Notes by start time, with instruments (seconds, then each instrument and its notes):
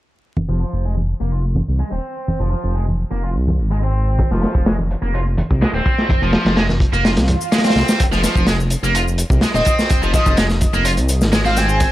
0.37 detuned saw bass F1, high conga, shaker
0.49 detuned saw bass F1, distorted electric guitar F3
0.61 distorted electric guitar F3
0.73 detuned saw bass F1, shaker
0.85 distorted electric guitar G#3, shaker
0.97 high conga
1.21 detuned saw bass F1, distorted electric guitar A#3, shaker
1.32 distorted electric guitar F4, shaker
1.46 shaker
1.56 high conga
1.68 detuned saw bass C2, shaker
1.80 distorted electric guitar G#3, shaker
1.92 detuned saw bass D#1, distorted electric guitar C4, shaker
2.17 shaker
2.28 detuned saw bass F1, high conga, shaker
2.40 detuned saw bass F1, distorted electric guitar F3, shaker
2.51 distorted electric guitar F3
2.64 detuned saw bass F1, shaker
2.75 distorted electric guitar G#3, shaker
2.88 high conga, shaker
3.11 detuned saw bass F1, distorted electric guitar A#3, shaker
3.23 distorted electric guitar F4, shaker
3.35 detuned saw bass C2, shaker
3.48 high conga
3.59 detuned saw bass G#1, shaker
3.71 distorted electric guitar G#3, shaker
3.83 distorted electric guitar C4, shaker
4.07 shaker
4.19 kick, closed hi-hat, high conga, shaker
4.31 detuned saw bass F1, distorted electric guitar F3, snare, shaker
4.42 distorted electric guitar F3, snare, closed hi-hat
4.55 detuned saw bass F1, kick, shaker
4.66 distorted electric guitar G#3, snare, closed hi-hat, shaker
4.79 high conga, shaker
4.91 closed hi-hat
5.02 detuned saw bass F1, distorted electric guitar A#3, shaker
5.14 distorted electric guitar F4, closed hi-hat, shaker
5.27 shaker
5.37 closed hi-hat, high conga
5.50 detuned saw bass C2, kick, shaker
5.62 distorted electric guitar G#3, snare, closed hi-hat, shaker
5.74 detuned saw bass D#1, distorted electric guitar C4, snare, shaker
5.86 kick, closed hi-hat
5.98 snare, shaker
6.09 detuned saw bass F1, kick, closed hi-hat, high conga, shaker
6.21 detuned saw bass F1, distorted electric guitar F3, shaker
6.33 distorted electric guitar F3, snare, closed hi-hat
6.45 detuned saw bass F1, snare, closed hi-hat, shaker
6.57 distorted electric guitar G#3, snare, closed hi-hat, shaker
6.69 snare, high conga, shaker
6.80 kick, closed hi-hat
6.93 detuned saw bass F1, distorted electric guitar A#3, shaker
7.05 distorted electric guitar F4, snare, closed hi-hat, swell, shaker
7.17 detuned saw bass C2, snare, closed hi-hat, shaker
7.28 detuned saw bass C2, closed hi-hat, high conga
7.41 shaker
7.52 distorted electric guitar G#3, snare, closed hi-hat, shaker
7.58 snare, closed hi-hat
7.64 distorted electric guitar C4, snare, closed hi-hat, shaker
7.70 snare, closed hi-hat
7.76 detuned saw bass C2, snare, closed hi-hat
7.88 snare, closed hi-hat, shaker
8.00 detuned saw bass F1, kick, closed hi-hat, shaker
8.11 detuned saw bass F1, distorted electric guitar F3, snare, shaker
8.24 distorted electric guitar F3, snare, closed hi-hat, shaker
8.35 detuned saw bass F1, kick, shaker
8.47 distorted electric guitar G#3, snare, closed hi-hat, shaker
8.60 shaker
8.70 closed hi-hat, shaker
8.83 detuned saw bass F1, distorted electric guitar A#3, shaker
8.95 distorted electric guitar F4, closed hi-hat, shaker
9.08 shaker
9.18 closed hi-hat, shaker
9.30 detuned saw bass C2, kick, shaker
9.41 distorted electric guitar G#3, snare, closed hi-hat, shaker
9.54 detuned saw bass D#1, distorted electric guitar C4, digital synth lead D#5, snare, shaker
9.65 digital synth lead D#5, kick, closed hi-hat, shaker
9.79 snare, shaker
9.89 detuned saw bass F1, kick, closed hi-hat, shaker
10.02 detuned saw bass F1, distorted electric guitar F3, shaker
10.13 distorted electric guitar F3, digital synth lead D#5, kick, closed hi-hat, shaker
10.26 detuned saw bass F1, kick, shaker
10.37 distorted electric guitar G#3, snare, closed hi-hat, shaker
10.50 snare, shaker
10.61 kick, closed hi-hat, shaker
10.74 detuned saw bass F1, distorted electric guitar A#3, shaker
10.85 distorted electric guitar F4, closed hi-hat, shaker
10.97 detuned saw bass C2, closed hi-hat, shaker
11.09 closed hi-hat, shaker
11.21 detuned saw bass G#1, snare, shaker
11.32 distorted electric guitar G#3, snare, closed hi-hat, shaker
11.45 distorted electric guitar C4, digital synth lead F5, snare, shaker
11.57 digital synth lead G#5, snare, closed hi-hat, shaker
11.69 shaker
11.80 kick, closed hi-hat, shaker